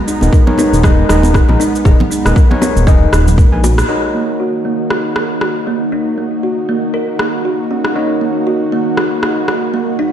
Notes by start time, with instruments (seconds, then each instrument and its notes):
Already playing: analog synth pad G#3 B3 D#4 A#5
0.08 kalimba D#4, shaker
0.21 detuned saw bass D#1, tine electric piano D#4 G#4 A#4 B4 D#5, high conga, shaker
0.33 kalimba A#4, kick, shaker
0.47 tine electric piano D#4 G#4 A#4 B4 C#5, high conga, low conga
0.58 kalimba D#4, high bongo, low bongo, high conga, shaker
0.73 detuned saw bass D#1, low bongo, shaker
0.83 tine electric piano D#4 G#4 A#4 B4 D#5, kalimba A#4, kick, cross-stick, low conga, shaker
1.09 detuned saw bass D#1, tine electric piano D#4 G#4 A#4 B4 D#5, kalimba D#4, cross-stick, shaker
1.23 high conga, shaker
1.34 kalimba A#4, kick, cross-stick, shaker
1.49 detuned saw bass A#1, tine electric piano D#4 G#4 A#4 B4 D#5, high bongo, low bongo
1.60 kalimba D#4, low bongo, shaker
1.75 shaker
1.85 detuned saw bass D#1, tine electric piano D#4 G#4 A#4 B4 D#5, kalimba G#4, kick, shaker
2.00 high conga, low conga
2.11 kalimba D#4, shaker
2.25 detuned saw bass D#1, tine electric piano D#4 G#4 A#4 B4 D#5, cross-stick, low bongo, high conga, shaker
2.36 kalimba A#4, kick, shaker
2.51 tine electric piano D#4 G#4 A#4 B4 C#5, high conga, low conga
2.62 kalimba D#4, high bongo, low bongo, high conga, shaker
2.76 detuned saw bass D#1, low bongo, shaker
2.87 tine electric piano D#4 G#4 A#4 B4 D#5, kalimba D#5, kick, shaker
3.12 detuned saw bass D#1, kalimba D#4, cross-stick, shaker
3.28 low conga, shaker
3.38 kalimba A#4, kick, shaker
3.52 detuned saw bass A#1, tine electric piano D#4 G#4 A#4 B4 G#5
3.63 kalimba F#4, high bongo, shaker
3.78 cross-stick, shaker
3.88 analog synth pad D#3 A#3 D#4 F#4, kalimba D#4, tine electric piano D#4 F#4 A#4 C#5 D#5
4.14 kalimba A#3
4.40 kalimba F#4
4.65 kalimba A#3
4.90 kalimba F#4, cross-stick
5.16 kalimba A#3, cross-stick
5.41 kalimba F#4, cross-stick
5.67 kalimba A#3
5.92 kalimba D#4
6.18 kalimba A#3
6.43 kalimba F#4
6.69 kalimba A#3
6.94 kalimba A#4
7.19 kalimba A#3, cross-stick
7.45 kalimba F#4
7.71 kalimba C#4
7.85 cross-stick
7.95 tine electric piano D#4 F#4 A#4 C#5 D#5, kalimba D#4
8.21 kalimba A#3
8.47 kalimba F#4
8.72 kalimba A#3
8.97 kalimba F#4, cross-stick
9.23 kalimba A#3, cross-stick
9.48 kalimba F#4, cross-stick
9.74 kalimba A#3
9.99 kalimba D#4